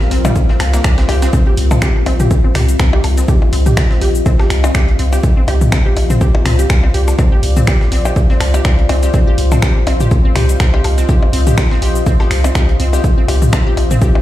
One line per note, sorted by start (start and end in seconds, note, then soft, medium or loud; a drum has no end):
0.00 14.22 C4 medium
0.00 14.22 F4 medium
0.00 5.87 A#4 medium
0.00 1.52 F5 medium
0.00 snare medium
0.11 0.31 A#1 medium
0.11 0.17 C4 medium
0.11 snare medium
0.11 closed hi-hat medium
0.11 open hi-hat medium
0.25 0.32 G3 medium
0.25 mid tom medium
0.25 cabasa medium
0.25 percussion blips medium
0.36 kick loud
0.36 closed hi-hat medium
0.36 cabasa soft
0.49 0.54 C4 medium
0.49 snare medium
0.60 0.80 C2 medium
0.60 finger snap medium
0.60 snare loud
0.60 closed hi-hat medium
0.60 open hi-hat medium
0.60 percussion blips medium
0.73 0.78 A#3 medium
0.73 snare loud
0.73 closed hi-hat medium
0.73 closed hi-hat soft
0.73 cabasa medium
0.73 percussion blips soft
0.84 1.04 C2 medium
0.84 0.93 D4 medium
0.84 finger snap medium
0.84 kick loud
0.84 snare loud
0.84 closed hi-hat medium
0.84 cabasa soft
0.98 1.02 C4 medium
0.98 snare loud
0.98 closed hi-hat medium
1.09 1.29 C2 medium
1.09 1.14 G4 loud
1.09 snare loud
1.09 closed hi-hat medium
1.09 open hi-hat medium
1.09 percussion blips medium
1.22 1.29 C4 loud
1.22 snare loud
1.22 closed hi-hat soft
1.22 closed hi-hat medium
1.22 cabasa medium
1.33 1.39 C4 medium
1.33 kick loud
1.33 closed hi-hat medium
1.33 cabasa soft
1.47 1.51 G4 medium
1.47 5.42 D#5 medium
1.57 1.77 C2 loud
1.57 closed hi-hat medium
1.57 open hi-hat medium
1.71 1.76 C4 medium
1.71 mid tom loud
1.71 percussion blips medium
1.71 cabasa medium
1.71 percussion blips soft
1.82 1.88 G4 medium
1.82 finger snap loud
1.82 kick loud
1.82 snare loud
1.82 closed hi-hat medium
1.82 cabasa soft
2.06 2.26 A#1 medium
2.06 2.12 C4 medium
2.06 closed hi-hat medium
2.06 open hi-hat medium
2.06 percussion blips medium
2.20 2.24 G4 medium
2.20 closed hi-hat soft
2.20 mid tom medium
2.20 cabasa medium
2.31 kick loud
2.31 closed hi-hat medium
2.31 cabasa soft
2.44 2.49 C4 medium
2.55 2.75 C2 loud
2.55 2.61 G4 medium
2.55 finger snap medium
2.55 closed hi-hat medium
2.55 mid tom medium
2.55 open hi-hat medium
2.55 percussion blips soft
2.69 closed hi-hat soft
2.69 cabasa medium
2.79 2.99 C2 medium
2.79 2.85 C4 medium
2.79 finger snap medium
2.79 kick loud
2.79 snare loud
2.79 closed hi-hat medium
2.79 cabasa soft
2.93 2.98 G4 medium
2.93 percussion blips medium
3.04 3.24 C2 medium
3.04 closed hi-hat medium
3.04 open hi-hat medium
3.04 percussion blips medium
3.17 3.22 C4 medium
3.17 snare medium
3.17 closed hi-hat soft
3.17 cabasa medium
3.28 3.34 G4 medium
3.28 kick loud
3.28 closed hi-hat medium
3.28 cabasa soft
3.42 percussion blips soft
3.53 3.73 C2 loud
3.53 3.58 C4 medium
3.53 closed hi-hat medium
3.53 open hi-hat medium
3.66 3.71 G4 medium
3.66 closed hi-hat soft
3.66 mid tom loud
3.66 cabasa medium
3.77 finger snap loud
3.77 kick loud
3.77 snare loud
3.77 open hi-hat medium
3.77 cabasa soft
3.77 percussion blips medium
3.91 3.95 C4 medium
3.91 snare medium
4.01 4.21 A#1 medium
4.01 4.07 G4 medium
4.01 snare medium
4.01 closed hi-hat medium
4.01 open hi-hat medium
4.15 cabasa medium
4.26 4.32 C4 medium
4.26 kick loud
4.26 closed hi-hat medium
4.26 cabasa soft
4.26 percussion blips soft
4.39 4.44 G4 medium
4.39 snare medium
4.39 percussion blips medium
4.50 4.70 C2 loud
4.50 finger snap medium
4.50 closed hi-hat medium
4.50 open hi-hat medium
4.64 4.68 C4 medium
4.64 closed hi-hat soft
4.64 cabasa medium
4.64 percussion blips medium
4.75 4.94 C2 medium
4.75 4.80 G4 medium
4.75 finger snap loud
4.75 kick loud
4.75 snare loud
4.75 closed hi-hat medium
4.75 cabasa soft
4.88 closed hi-hat soft
4.99 5.19 C2 medium
4.99 5.05 C4 medium
4.99 closed hi-hat medium
4.99 open hi-hat medium
5.13 5.17 G4 medium
5.13 snare medium
5.13 closed hi-hat soft
5.13 cabasa medium
5.13 percussion blips soft
5.23 kick loud
5.23 closed hi-hat medium
5.23 cabasa soft
5.37 5.41 C4 medium
5.37 9.32 D5 loud
5.48 5.68 C2 loud
5.48 5.53 G4 medium
5.48 closed hi-hat medium
5.48 open hi-hat medium
5.48 percussion blips medium
5.61 mid tom loud
5.61 cabasa medium
5.71 5.78 C4 medium
5.71 14.22 C5 medium
5.71 finger snap loud
5.71 kick loud
5.71 snare loud
5.71 closed hi-hat medium
5.71 percussion blips medium
5.71 cabasa soft
5.86 5.90 G4 medium
5.97 6.16 A#1 medium
5.97 closed hi-hat medium
5.97 open hi-hat medium
5.97 percussion blips soft
6.10 6.15 C4 medium
6.10 closed hi-hat soft
6.10 mid tom medium
6.10 cabasa medium
6.21 6.27 G4 medium
6.21 kick loud
6.21 closed hi-hat medium
6.21 cabasa soft
6.35 percussion blips medium
6.45 6.65 C2 loud
6.45 6.51 C4 medium
6.45 finger snap medium
6.45 closed hi-hat medium
6.45 mid tom medium
6.45 open hi-hat medium
6.59 6.63 G4 medium
6.59 closed hi-hat soft
6.59 cabasa medium
6.70 6.90 C2 medium
6.70 finger snap medium
6.70 kick loud
6.70 snare loud
6.70 closed hi-hat medium
6.70 cabasa soft
6.83 6.88 C4 medium
6.83 percussion blips soft
6.94 7.14 C2 medium
6.94 7.00 G4 medium
6.94 closed hi-hat medium
6.94 open hi-hat medium
7.08 snare medium
7.08 closed hi-hat soft
7.08 percussion blips medium
7.08 cabasa medium
7.18 7.24 C4 medium
7.18 kick loud
7.18 closed hi-hat medium
7.18 cabasa soft
7.18 percussion blips medium
7.32 7.37 G4 medium
7.43 7.63 C2 loud
7.43 closed hi-hat medium
7.43 open hi-hat medium
7.57 7.61 C4 medium
7.57 closed hi-hat soft
7.57 mid tom medium
7.57 cabasa medium
7.67 7.73 G4 medium
7.67 finger snap medium
7.67 kick loud
7.67 snare loud
7.67 open hi-hat medium
7.67 cabasa soft
7.67 percussion blips soft
7.81 snare medium
7.92 8.11 A#1 medium
7.92 7.97 C4 medium
7.92 snare medium
7.92 closed hi-hat medium
7.92 open hi-hat medium
8.05 8.10 G4 medium
8.05 cabasa soft
8.05 percussion blips medium
8.16 kick loud
8.16 closed hi-hat medium
8.16 cabasa soft
8.30 8.34 C4 medium
8.30 snare medium
8.40 8.60 C2 medium
8.40 finger snap medium
8.40 closed hi-hat medium
8.40 open hi-hat medium
8.40 percussion blips medium
8.54 8.61 G4 medium
8.54 closed hi-hat soft
8.54 cabasa medium
8.54 percussion blips soft
8.65 8.85 C2 medium
8.65 8.71 C4 medium
8.65 finger snap medium
8.65 kick loud
8.65 snare loud
8.65 closed hi-hat medium
8.65 cabasa soft
8.79 closed hi-hat soft
8.89 9.09 C2 medium
8.89 8.95 C4 medium
8.89 closed hi-hat medium
8.89 open hi-hat medium
8.89 percussion blips medium
9.03 9.07 G4 medium
9.03 snare medium
9.03 closed hi-hat soft
9.03 cabasa medium
9.14 9.19 C4 medium
9.14 kick loud
9.14 closed hi-hat medium
9.14 cabasa soft
9.27 9.32 G4 medium
9.27 13.22 D#5 medium
9.38 9.58 C2 loud
9.38 closed hi-hat medium
9.38 open hi-hat medium
9.52 9.56 C4 medium
9.52 mid tom medium
9.52 percussion blips medium
9.52 cabasa soft
9.52 percussion blips soft
9.62 9.68 G4 medium
9.62 finger snap medium
9.62 kick loud
9.62 snare loud
9.62 closed hi-hat medium
9.62 cabasa soft
9.87 10.07 A#1 medium
9.87 9.92 C4 medium
9.87 closed hi-hat medium
9.87 open hi-hat medium
9.87 percussion blips medium
10.00 10.05 G4 medium
10.00 closed hi-hat soft
10.00 mid tom medium
10.00 cabasa medium
10.11 kick loud
10.11 closed hi-hat medium
10.11 cabasa soft
10.25 10.29 C4 medium
10.36 10.55 C2 loud
10.36 10.41 G4 medium
10.36 finger snap medium
10.36 closed hi-hat medium
10.36 mid tom medium
10.36 open hi-hat medium
10.36 percussion blips soft
10.49 closed hi-hat soft
10.49 cabasa medium
10.60 10.80 C2 medium
10.60 10.66 C4 medium
10.60 finger snap medium
10.60 kick loud
10.60 snare loud
10.60 closed hi-hat medium
10.60 cabasa soft
10.74 10.78 G4 medium
10.74 percussion blips medium
10.84 11.04 C2 medium
10.84 closed hi-hat medium
10.84 open hi-hat medium
10.84 percussion blips medium
10.98 11.02 C4 medium
10.98 snare medium
10.98 closed hi-hat soft
10.98 cabasa soft
11.09 11.14 G4 medium
11.09 kick loud
11.09 closed hi-hat medium
11.09 cabasa soft
11.22 percussion blips soft
11.33 11.53 C2 loud
11.33 11.39 C4 medium
11.33 closed hi-hat medium
11.33 open hi-hat medium
11.47 11.51 G4 medium
11.47 closed hi-hat soft
11.47 mid tom medium
11.47 cabasa medium
11.58 finger snap medium
11.58 kick loud
11.58 snare loud
11.58 open hi-hat medium
11.58 cabasa soft
11.58 percussion blips medium
11.71 11.76 C4 medium
11.71 snare medium
11.82 12.02 A#1 medium
11.82 11.88 G4 medium
11.82 snare medium
11.82 closed hi-hat medium
11.82 open hi-hat medium
11.96 cabasa medium
12.06 12.12 C4 medium
12.06 kick loud
12.06 closed hi-hat medium
12.06 cabasa soft
12.06 percussion blips soft
12.20 12.24 G4 medium
12.20 snare medium
12.20 percussion blips medium
12.31 12.51 C2 loud
12.31 finger snap medium
12.31 closed hi-hat medium
12.31 open hi-hat medium
12.44 12.49 C4 medium
12.44 closed hi-hat soft
12.44 cabasa medium
12.44 percussion blips medium
12.55 12.75 C2 medium
12.55 12.61 G4 medium
12.55 finger snap medium
12.55 kick loud
12.55 snare loud
12.55 closed hi-hat medium
12.55 cabasa soft
12.69 closed hi-hat soft
12.80 12.99 C2 medium
12.80 12.85 C4 medium
12.80 closed hi-hat medium
12.80 open hi-hat medium
12.93 12.98 G4 medium
12.93 snare medium
12.93 closed hi-hat soft
12.93 cabasa medium
12.93 percussion blips soft
13.04 kick loud
13.04 closed hi-hat medium
13.04 cabasa soft
13.18 13.22 C4 medium
13.18 14.22 G5 medium
13.28 13.48 C2 loud
13.28 13.34 G4 medium
13.28 closed hi-hat medium
13.28 open hi-hat medium
13.28 percussion blips medium
13.42 mid tom loud
13.42 cabasa medium
13.53 13.58 C4 medium
13.53 finger snap medium
13.53 kick loud
13.53 snare loud
13.53 closed hi-hat medium
13.53 percussion blips medium
13.53 cabasa soft
13.67 13.71 G4 medium
13.77 13.97 A#1 medium
13.77 closed hi-hat medium
13.77 open hi-hat medium
13.77 percussion blips soft
13.91 13.95 C4 medium
13.91 closed hi-hat soft
13.91 mid tom medium
13.91 cabasa medium
14.02 14.07 G4 medium
14.02 kick loud
14.02 closed hi-hat medium
14.02 cabasa soft
14.15 percussion blips medium